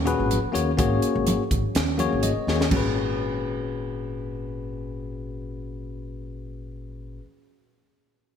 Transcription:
Already playing: D#2
0.05 A#2 C#4 F#4 G#4 B4, closed hi-hat
0.20 G#1
0.31 closed hi-hat, high conga
0.44 muted upright bass stroke
0.52 D#2 A#3 C#4 F#4 G#4 C#5, closed hi-hat
0.77 G#1 A#3 C#4 F#4 G#4 C#5, kick, closed hi-hat, muted conga
1.02 muted upright bass stroke, closed hi-hat, muted conga
1.15 G#1
1.27 closed hi-hat, high conga
1.51 G#1, kick, closed hi-hat, muted conga, low conga
1.75 D#2, snare, closed hi-hat, muted conga
1.98 A#3 C#4 F#4 G#4 C#5, closed hi-hat, high conga
2.13 G#1
2.23 D#5, closed hi-hat, high conga
2.37 muted upright bass stroke
2.47 D#2 A#3 C#4 F#4 G#4 C#5, snare
2.61 snare
2.69 G#1 A#2 C#4 F#4, kick, crash, muted conga
2.75 G#4 B4

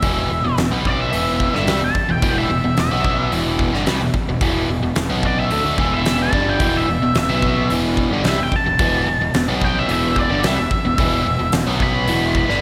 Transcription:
Already playing: E5
0.02 E1 E2 B2 E3, kick, open hi-hat
0.31 E1 E2 B2
0.44 E1 E2 B2
0.58 E1 E2 B2, snare, open hi-hat
0.71 B1 B2 F#3 B3
0.85 D5, kick
1.01 E5
1.12 E1 E2 B2 E3, open hi-hat
1.40 kick
1.54 G1 G2 D3 E5, snare
1.67 C2 C3 G3, snare, open hi-hat
1.81 E1 E2 B2 A5
1.95 muted fingered electric bass stroke, muted overdriven electric guitar stroke, kick
2.09 E1 E2 B2 G5
2.22 E1 E2 B2 E3, kick, open hi-hat
2.38 E5
2.49 E1 E2 B2
2.64 E1 E2 B2
2.77 E1 E2 B2 E5, snare, open hi-hat
2.91 B1 B2 F#3 B3
3.04 kick
3.32 E1 E2 B2 E3, open hi-hat
3.59 kick
3.73 G1 G2 D3, snare
3.86 C2 C3 G3, snare, open hi-hat
4.00 E1 E2 B2
4.14 muted fingered electric bass stroke, muted overdriven electric guitar stroke, kick
4.27 E1 E2 B2
4.41 E1 E2 B2 E3, kick, open hi-hat
4.68 E1 E2 B2
4.82 E1 E2 B2
4.95 E1 E2 B2, snare, open hi-hat
5.09 B1 B2 F#3 B3
5.23 D5, kick
5.40 E5
5.50 D2 D3 A3, open hi-hat
5.64 D2 D3 A3
5.78 E1 E2 B2 E3, kick
5.94 E5
6.05 snare, open hi-hat
6.22 A5
6.32 G1 G2 D3 G3, kick
6.50 G5
6.60 E1 E2 B2 E3, kick, open hi-hat
6.77 E5
6.88 E1 E2 B2
7.01 E1 E2 B2
7.15 E1 E2 B2 E5, snare, open hi-hat
7.29 B1 B2 F#3 B3
7.42 kick
7.70 E1 E2 B2 E3, open hi-hat
7.97 kick
8.10 G1 G2 D3
8.24 C2 C3 G3, snare, open hi-hat
8.29 E5
8.38 E1 E2 B2
8.43 G5
8.52 A5, muted fingered electric bass stroke, muted overdriven electric guitar stroke, kick
8.65 E1 E2 B2
8.79 E1 E2 B2 E3, kick, open hi-hat
9.07 E1 E2 B2
9.20 E1 E2 B2
9.34 E1 E2 B2, snare, open hi-hat
9.47 B1 B2 F#3 B3
9.61 G5, kick
9.79 E5
9.89 E1 E2 B2 E3 E5, open hi-hat
10.16 D5, kick
10.30 G1 G2 D3
10.43 C2 C3 G3 E5, snare, open hi-hat
10.57 E1 E2 B2
10.71 muted fingered electric bass stroke, muted overdriven electric guitar stroke, kick
10.85 E1 E2 B2
10.98 E1 E2 B2 E3, kick, open hi-hat
11.26 E1 E2 B2
11.39 E1 E2 B2
11.52 E1 E2 B2, snare, open hi-hat
11.66 B1 B2 F#3 B3
11.80 B5, kick
12.07 E1 E2 B2 E3, open hi-hat
12.35 B5, kick
12.49 G1 G2 D3, snare

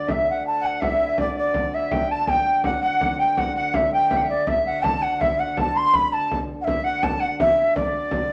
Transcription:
Already playing: D5
0.07 D2 E5, frame drum
0.30 F#5
0.47 A5
0.61 F#5, frame drum
0.66 F#5
0.80 E5, frame drum
0.84 E5
1.18 D5, frame drum
1.36 D5
1.54 frame drum
1.72 E5, frame drum
1.91 G5, frame drum
2.11 A5
2.27 G5, frame drum
2.64 F#5, frame drum
2.81 F#5, frame drum
3.01 frame drum
3.18 G5
3.37 F#5, frame drum
3.56 F#5
3.74 E5, frame drum
3.92 G5, frame drum
4.10 E5, frame drum
4.17 F#5
4.22 E5
4.30 D5
4.46 D2 E5, frame drum
4.66 F#5
4.81 A5, frame drum
5.02 F#5, frame drum
5.20 E5, frame drum
5.38 F#5
5.57 A5, frame drum
5.74 C6
5.94 B5, frame drum
6.12 A5, frame drum
6.31 frame drum
6.61 E5 F#5
6.67 E5, frame drum
6.84 F#5
7.03 A5, frame drum
7.20 F#5, frame drum
7.40 E5, frame drum
7.58 E5
7.76 D5, frame drum
8.11 frame drum

